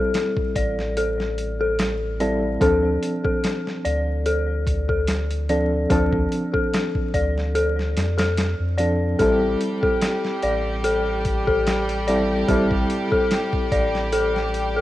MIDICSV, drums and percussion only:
0, 0, Header, 1, 2, 480
1, 0, Start_track
1, 0, Key_signature, 0, "minor"
1, 0, Tempo, 821918
1, 1527, Time_signature, 4, 2, 24, 8
1, 8650, End_track
2, 0, Start_track
2, 0, Title_t, "Drums"
2, 83, Note_on_c, 9, 42, 86
2, 87, Note_on_c, 9, 38, 109
2, 141, Note_off_c, 9, 42, 0
2, 146, Note_off_c, 9, 38, 0
2, 214, Note_on_c, 9, 36, 91
2, 272, Note_off_c, 9, 36, 0
2, 324, Note_on_c, 9, 36, 87
2, 325, Note_on_c, 9, 42, 65
2, 382, Note_off_c, 9, 36, 0
2, 384, Note_off_c, 9, 42, 0
2, 460, Note_on_c, 9, 38, 34
2, 519, Note_off_c, 9, 38, 0
2, 566, Note_on_c, 9, 42, 81
2, 624, Note_off_c, 9, 42, 0
2, 701, Note_on_c, 9, 38, 35
2, 759, Note_off_c, 9, 38, 0
2, 806, Note_on_c, 9, 42, 62
2, 864, Note_off_c, 9, 42, 0
2, 1044, Note_on_c, 9, 42, 90
2, 1049, Note_on_c, 9, 38, 113
2, 1102, Note_off_c, 9, 42, 0
2, 1107, Note_off_c, 9, 38, 0
2, 1286, Note_on_c, 9, 42, 63
2, 1344, Note_off_c, 9, 42, 0
2, 1524, Note_on_c, 9, 36, 103
2, 1527, Note_on_c, 9, 42, 79
2, 1582, Note_off_c, 9, 36, 0
2, 1585, Note_off_c, 9, 42, 0
2, 1768, Note_on_c, 9, 42, 66
2, 1826, Note_off_c, 9, 42, 0
2, 1896, Note_on_c, 9, 36, 88
2, 1954, Note_off_c, 9, 36, 0
2, 2007, Note_on_c, 9, 42, 82
2, 2012, Note_on_c, 9, 38, 111
2, 2066, Note_off_c, 9, 42, 0
2, 2071, Note_off_c, 9, 38, 0
2, 2144, Note_on_c, 9, 38, 35
2, 2203, Note_off_c, 9, 38, 0
2, 2249, Note_on_c, 9, 42, 64
2, 2308, Note_off_c, 9, 42, 0
2, 2486, Note_on_c, 9, 42, 83
2, 2545, Note_off_c, 9, 42, 0
2, 2726, Note_on_c, 9, 36, 90
2, 2729, Note_on_c, 9, 42, 62
2, 2784, Note_off_c, 9, 36, 0
2, 2787, Note_off_c, 9, 42, 0
2, 2856, Note_on_c, 9, 36, 86
2, 2914, Note_off_c, 9, 36, 0
2, 2964, Note_on_c, 9, 42, 84
2, 2968, Note_on_c, 9, 38, 108
2, 3022, Note_off_c, 9, 42, 0
2, 3027, Note_off_c, 9, 38, 0
2, 3099, Note_on_c, 9, 42, 41
2, 3157, Note_off_c, 9, 42, 0
2, 3208, Note_on_c, 9, 42, 64
2, 3266, Note_off_c, 9, 42, 0
2, 3446, Note_on_c, 9, 36, 98
2, 3447, Note_on_c, 9, 42, 79
2, 3505, Note_off_c, 9, 36, 0
2, 3505, Note_off_c, 9, 42, 0
2, 3577, Note_on_c, 9, 36, 91
2, 3636, Note_off_c, 9, 36, 0
2, 3691, Note_on_c, 9, 42, 63
2, 3749, Note_off_c, 9, 42, 0
2, 3819, Note_on_c, 9, 36, 87
2, 3877, Note_off_c, 9, 36, 0
2, 3934, Note_on_c, 9, 42, 86
2, 3938, Note_on_c, 9, 38, 109
2, 3992, Note_off_c, 9, 42, 0
2, 3997, Note_off_c, 9, 38, 0
2, 4059, Note_on_c, 9, 36, 83
2, 4117, Note_off_c, 9, 36, 0
2, 4169, Note_on_c, 9, 36, 84
2, 4171, Note_on_c, 9, 42, 65
2, 4227, Note_off_c, 9, 36, 0
2, 4229, Note_off_c, 9, 42, 0
2, 4308, Note_on_c, 9, 38, 32
2, 4366, Note_off_c, 9, 38, 0
2, 4410, Note_on_c, 9, 42, 81
2, 4469, Note_off_c, 9, 42, 0
2, 4551, Note_on_c, 9, 38, 34
2, 4609, Note_off_c, 9, 38, 0
2, 4652, Note_on_c, 9, 42, 71
2, 4657, Note_on_c, 9, 38, 93
2, 4711, Note_off_c, 9, 42, 0
2, 4716, Note_off_c, 9, 38, 0
2, 4780, Note_on_c, 9, 42, 78
2, 4785, Note_on_c, 9, 38, 100
2, 4838, Note_off_c, 9, 42, 0
2, 4843, Note_off_c, 9, 38, 0
2, 4891, Note_on_c, 9, 42, 83
2, 4896, Note_on_c, 9, 38, 115
2, 4949, Note_off_c, 9, 42, 0
2, 4954, Note_off_c, 9, 38, 0
2, 5129, Note_on_c, 9, 42, 66
2, 5187, Note_off_c, 9, 42, 0
2, 5368, Note_on_c, 9, 36, 93
2, 5369, Note_on_c, 9, 42, 78
2, 5427, Note_off_c, 9, 36, 0
2, 5427, Note_off_c, 9, 42, 0
2, 5610, Note_on_c, 9, 42, 64
2, 5668, Note_off_c, 9, 42, 0
2, 5740, Note_on_c, 9, 36, 93
2, 5798, Note_off_c, 9, 36, 0
2, 5849, Note_on_c, 9, 42, 86
2, 5854, Note_on_c, 9, 38, 112
2, 5907, Note_off_c, 9, 42, 0
2, 5912, Note_off_c, 9, 38, 0
2, 5984, Note_on_c, 9, 38, 39
2, 6042, Note_off_c, 9, 38, 0
2, 6088, Note_on_c, 9, 42, 61
2, 6147, Note_off_c, 9, 42, 0
2, 6331, Note_on_c, 9, 42, 83
2, 6389, Note_off_c, 9, 42, 0
2, 6569, Note_on_c, 9, 42, 64
2, 6570, Note_on_c, 9, 36, 85
2, 6627, Note_off_c, 9, 42, 0
2, 6629, Note_off_c, 9, 36, 0
2, 6701, Note_on_c, 9, 36, 88
2, 6760, Note_off_c, 9, 36, 0
2, 6813, Note_on_c, 9, 42, 90
2, 6818, Note_on_c, 9, 38, 106
2, 6872, Note_off_c, 9, 42, 0
2, 6876, Note_off_c, 9, 38, 0
2, 6944, Note_on_c, 9, 42, 41
2, 7003, Note_off_c, 9, 42, 0
2, 7053, Note_on_c, 9, 42, 63
2, 7112, Note_off_c, 9, 42, 0
2, 7291, Note_on_c, 9, 36, 104
2, 7291, Note_on_c, 9, 42, 80
2, 7349, Note_off_c, 9, 36, 0
2, 7350, Note_off_c, 9, 42, 0
2, 7421, Note_on_c, 9, 36, 93
2, 7480, Note_off_c, 9, 36, 0
2, 7532, Note_on_c, 9, 42, 65
2, 7591, Note_off_c, 9, 42, 0
2, 7661, Note_on_c, 9, 36, 88
2, 7719, Note_off_c, 9, 36, 0
2, 7771, Note_on_c, 9, 42, 87
2, 7776, Note_on_c, 9, 38, 110
2, 7830, Note_off_c, 9, 42, 0
2, 7834, Note_off_c, 9, 38, 0
2, 7901, Note_on_c, 9, 36, 91
2, 7960, Note_off_c, 9, 36, 0
2, 8011, Note_on_c, 9, 36, 95
2, 8012, Note_on_c, 9, 42, 64
2, 8069, Note_off_c, 9, 36, 0
2, 8070, Note_off_c, 9, 42, 0
2, 8147, Note_on_c, 9, 38, 38
2, 8205, Note_off_c, 9, 38, 0
2, 8249, Note_on_c, 9, 42, 85
2, 8307, Note_off_c, 9, 42, 0
2, 8387, Note_on_c, 9, 38, 35
2, 8446, Note_off_c, 9, 38, 0
2, 8492, Note_on_c, 9, 42, 60
2, 8550, Note_off_c, 9, 42, 0
2, 8650, End_track
0, 0, End_of_file